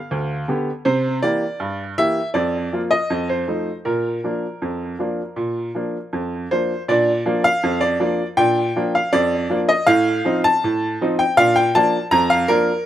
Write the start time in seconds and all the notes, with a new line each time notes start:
Already playing: F5
0.11 D2
0.48 D3 B3 G4
0.85 C3 C5
1.23 E3 A#3 G4 D5
1.60 G2
1.98 E3 A#3 G4 E5
2.34 F2 D5
2.73 F3 A#3 F4
2.91 D#5
3.10 F2
3.29 C5
3.48 F3 A3 D#4
3.85 A#2 A#4
4.24 F3 A#3 D4
4.62 F2
4.99 F3 A#3 D4
5.36 A#2
5.75 F3 A#3 D4
6.13 F2
6.51 F3 A#3 D4 C5
6.88 A#2 D4 D5
7.26 F3 A#3 D4
7.44 F5
7.63 F2
7.81 D5
8.00 F3 A#3 D4
8.37 A#2 D4 G5
8.76 F3 A#3 D4
8.95 F5
9.13 F2 D5
9.50 F3 A#3 D4
9.69 D#5
9.87 A2 F5
10.25 F3 C4 D#4
10.44 A5
10.64 A2
11.01 F3 C4 D#4
11.19 G5
11.37 A#2 D4 F5
11.56 G5
11.75 F3 A#3 D4 A5
12.11 F2 A#5
12.30 F5
12.48 F3 A#3 D4 A#4